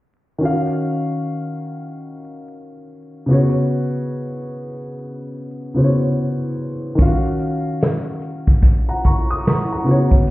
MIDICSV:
0, 0, Header, 1, 3, 480
1, 0, Start_track
1, 0, Key_signature, -6, "minor"
1, 0, Tempo, 821918
1, 242, Time_signature, 4, 2, 24, 8
1, 6018, End_track
2, 0, Start_track
2, 0, Title_t, "Upright piano"
2, 0, Program_c, 0, 0
2, 224, Note_on_c, 0, 51, 61
2, 238, Note_on_c, 0, 61, 57
2, 250, Note_on_c, 0, 66, 57
2, 264, Note_on_c, 0, 77, 78
2, 366, Control_c, 0, 64, 127
2, 1890, Note_off_c, 0, 51, 0
2, 1897, Note_off_c, 0, 61, 0
2, 1903, Note_off_c, 0, 66, 0
2, 1905, Note_on_c, 0, 49, 61
2, 1910, Note_off_c, 0, 77, 0
2, 1919, Note_on_c, 0, 59, 57
2, 1929, Control_c, 0, 64, 0
2, 1931, Note_on_c, 0, 66, 61
2, 1944, Note_on_c, 0, 73, 72
2, 2017, Control_c, 0, 64, 127
2, 3330, Note_off_c, 0, 49, 0
2, 3337, Note_off_c, 0, 59, 0
2, 3343, Note_off_c, 0, 66, 0
2, 3350, Note_off_c, 0, 73, 0
2, 3354, Note_on_c, 0, 49, 50
2, 3362, Note_on_c, 0, 59, 46
2, 3368, Note_on_c, 0, 66, 43
2, 3373, Note_on_c, 0, 72, 47
2, 3412, Note_on_c, 0, 73, 59
2, 3414, Note_off_c, 0, 72, 0
2, 4059, Note_on_c, 0, 51, 59
2, 4073, Note_on_c, 0, 61, 59
2, 4078, Note_off_c, 0, 49, 0
2, 4082, Note_off_c, 0, 59, 0
2, 4085, Note_off_c, 0, 66, 0
2, 4088, Note_on_c, 0, 65, 51
2, 4091, Control_c, 0, 64, 0
2, 4099, Note_on_c, 0, 77, 75
2, 4107, Note_off_c, 0, 73, 0
2, 4125, Note_on_c, 0, 66, 70
2, 4132, Note_off_c, 0, 65, 0
2, 4202, Control_c, 0, 64, 127
2, 5032, Note_off_c, 0, 77, 0
2, 5189, Note_on_c, 0, 82, 55
2, 5192, Note_on_c, 0, 78, 54
2, 5277, Note_off_c, 0, 82, 0
2, 5279, Note_off_c, 0, 78, 0
2, 5285, Note_on_c, 0, 85, 63
2, 5288, Note_on_c, 0, 82, 53
2, 5424, Note_off_c, 0, 85, 0
2, 5426, Note_off_c, 0, 82, 0
2, 5434, Note_on_c, 0, 87, 63
2, 5520, Note_off_c, 0, 87, 0
2, 5532, Note_on_c, 0, 85, 66
2, 5535, Note_on_c, 0, 82, 54
2, 5668, Note_off_c, 0, 85, 0
2, 5670, Note_off_c, 0, 82, 0
2, 5679, Note_on_c, 0, 82, 51
2, 5681, Note_on_c, 0, 78, 45
2, 5727, Note_off_c, 0, 51, 0
2, 5734, Note_off_c, 0, 61, 0
2, 5747, Note_on_c, 0, 49, 56
2, 5759, Note_on_c, 0, 59, 60
2, 5760, Note_off_c, 0, 66, 0
2, 5769, Control_c, 0, 64, 0
2, 5774, Note_on_c, 0, 66, 59
2, 5787, Note_on_c, 0, 73, 77
2, 5871, Control_c, 0, 64, 127
2, 5903, Note_off_c, 0, 82, 0
2, 5904, Note_off_c, 0, 78, 0
2, 6018, Note_off_c, 0, 49, 0
2, 6018, Note_off_c, 0, 59, 0
2, 6018, Note_off_c, 0, 66, 0
2, 6018, Note_off_c, 0, 73, 0
2, 6018, End_track
3, 0, Start_track
3, 0, Title_t, "Drums"
3, 4078, Note_on_c, 9, 42, 96
3, 4081, Note_on_c, 9, 36, 93
3, 4137, Note_off_c, 9, 42, 0
3, 4139, Note_off_c, 9, 36, 0
3, 4315, Note_on_c, 9, 42, 53
3, 4374, Note_off_c, 9, 42, 0
3, 4560, Note_on_c, 9, 42, 63
3, 4570, Note_on_c, 9, 38, 103
3, 4619, Note_off_c, 9, 42, 0
3, 4629, Note_off_c, 9, 38, 0
3, 4797, Note_on_c, 9, 42, 54
3, 4855, Note_off_c, 9, 42, 0
3, 4945, Note_on_c, 9, 42, 43
3, 4949, Note_on_c, 9, 36, 84
3, 5003, Note_off_c, 9, 42, 0
3, 5007, Note_off_c, 9, 36, 0
3, 5037, Note_on_c, 9, 36, 91
3, 5038, Note_on_c, 9, 42, 85
3, 5096, Note_off_c, 9, 36, 0
3, 5096, Note_off_c, 9, 42, 0
3, 5274, Note_on_c, 9, 42, 74
3, 5284, Note_on_c, 9, 36, 72
3, 5333, Note_off_c, 9, 42, 0
3, 5342, Note_off_c, 9, 36, 0
3, 5518, Note_on_c, 9, 42, 86
3, 5532, Note_on_c, 9, 38, 114
3, 5576, Note_off_c, 9, 42, 0
3, 5591, Note_off_c, 9, 38, 0
3, 5762, Note_on_c, 9, 42, 62
3, 5820, Note_off_c, 9, 42, 0
3, 5906, Note_on_c, 9, 36, 90
3, 5965, Note_off_c, 9, 36, 0
3, 5996, Note_on_c, 9, 42, 90
3, 6018, Note_off_c, 9, 42, 0
3, 6018, End_track
0, 0, End_of_file